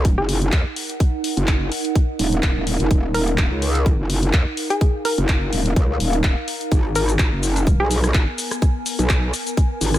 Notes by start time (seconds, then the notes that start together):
Already playing: C#2 D#4 A#4
0.05 kick, closed hi-hat
0.12 F#5
0.18 F#1 G#4
0.29 open hi-hat
0.42 closed hi-hat
0.52 D#2, kick, clap, closed hi-hat
0.76 open hi-hat
0.90 closed hi-hat
1.00 kick, closed hi-hat
1.24 open hi-hat
1.37 F#1, closed hi-hat
1.47 kick, clap, closed hi-hat
1.72 open hi-hat
1.85 closed hi-hat
1.95 kick, closed hi-hat
2.19 D#1, open hi-hat
2.33 closed hi-hat
2.43 kick, clap, closed hi-hat
2.56 D#1
2.67 open hi-hat
2.80 F#1, closed hi-hat
2.91 D#1, kick, closed hi-hat
3.14 A#4, open hi-hat
3.28 closed hi-hat
3.38 D#1, kick, clap, closed hi-hat
3.51 C#2
3.62 open hi-hat
3.75 closed hi-hat
3.86 kick, closed hi-hat
3.99 F#1
4.09 F5, open hi-hat
4.23 closed hi-hat
4.33 D#2, kick, clap, closed hi-hat
4.57 open hi-hat
4.70 G#4, closed hi-hat
4.81 kick, closed hi-hat
5.05 A#4, open hi-hat
5.18 F#1, closed hi-hat
5.28 kick, clap, closed hi-hat
5.53 D#1, open hi-hat
5.66 closed hi-hat
5.76 C#2, kick, closed hi-hat
6.00 D#1, open hi-hat
6.13 closed hi-hat
6.24 kick, clap, closed hi-hat
6.48 open hi-hat
6.61 closed hi-hat
6.72 G#1 B3, kick, closed hi-hat, cabasa
6.95 A#4, open hi-hat, cabasa
7.09 closed hi-hat, cabasa
7.19 G#1, kick, clap, closed hi-hat, cabasa
7.30 F#1 G#5
7.43 open hi-hat, cabasa
7.56 closed hi-hat, cabasa
7.67 kick, closed hi-hat, cabasa
7.80 B1 G#4
7.91 open hi-hat, cabasa
8.04 cross-stick, closed hi-hat, cabasa
8.14 G#1, kick, clap, closed hi-hat, cabasa
8.38 open hi-hat, cabasa
8.51 cross-stick, closed hi-hat, cabasa
8.62 kick, closed hi-hat, cabasa
8.86 open hi-hat, cabasa
8.99 B1, closed hi-hat, cabasa
9.09 kick, clap, closed hi-hat, cabasa
9.34 open hi-hat, cabasa
9.47 closed hi-hat, cabasa
9.57 kick, closed hi-hat, cabasa
9.81 G#1, open hi-hat, cabasa
9.94 cross-stick, closed hi-hat, cabasa